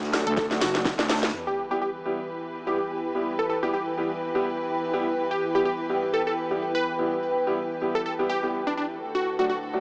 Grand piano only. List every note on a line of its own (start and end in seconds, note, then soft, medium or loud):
0.13 0.25 F#3 medium
0.13 0.25 A3 medium
0.13 0.25 D4 medium
0.13 0.25 F#4 medium
0.51 0.60 F#3 medium
0.51 0.60 A3 medium
0.51 0.60 D4 medium
0.51 0.60 F#4 loud
0.75 0.90 F#3 medium
0.75 0.90 A3 medium
0.75 0.90 D4 medium
0.75 0.90 F#4 medium
1.71 1.80 G3 medium
1.71 1.80 B3 medium
1.71 1.80 E4 medium
1.71 1.80 G4 medium
2.05 2.17 G3 medium
2.05 2.17 B3 medium
2.05 2.17 E4 medium
2.05 2.17 G4 medium
2.67 2.76 G3 medium
2.67 2.76 B3 medium
2.67 2.76 E4 medium
2.67 2.76 G4 medium
3.15 3.30 G3 medium
3.15 3.30 B3 medium
3.15 3.30 E4 medium
3.15 3.30 G4 medium
3.63 3.72 G3 medium
3.63 3.72 B3 medium
3.63 3.72 E4 medium
3.63 3.72 G4 medium
3.98 4.09 G3 medium
3.98 4.09 B3 medium
3.98 4.09 E4 medium
3.98 4.09 G4 medium
4.35 4.44 G3 medium
4.35 4.44 B3 medium
4.35 4.44 E4 medium
4.35 4.44 G4 medium
4.93 5.05 G3 medium
4.93 5.05 B3 medium
4.93 5.05 E4 medium
4.93 5.05 G4 loud
5.55 5.64 G3 medium
5.55 5.64 B3 medium
5.55 5.64 E4 medium
5.55 5.64 G4 medium
5.89 6.01 G3 medium
5.89 6.01 B3 medium
5.89 6.01 E4 medium
5.89 6.01 G4 medium
6.51 6.60 G3 medium
6.51 6.60 B3 medium
6.51 6.60 E4 medium
6.51 6.60 G4 medium
6.99 7.14 G3 medium
6.99 7.14 B3 medium
6.99 7.14 E4 medium
6.99 7.14 G4 medium
7.47 7.56 G3 medium
7.47 7.56 B3 medium
7.47 7.56 E4 medium
7.47 7.56 G4 medium
7.81 7.93 G3 medium
7.81 7.93 B3 medium
7.81 7.93 E4 medium
7.81 7.93 G4 medium
8.19 8.28 G3 medium
8.19 8.28 B3 medium
8.19 8.28 E4 medium
8.19 8.28 G4 medium
8.43 8.58 G3 medium
8.43 8.58 B3 medium
8.43 8.58 E4 medium
8.43 8.58 G4 medium
9.39 9.48 F#3 medium
9.39 9.48 A3 medium
9.39 9.48 D4 medium
9.39 9.48 F#4 medium
9.74 9.80 F#3 medium
9.74 9.80 A3 medium
9.74 9.80 D4 medium
9.74 9.80 F#4 medium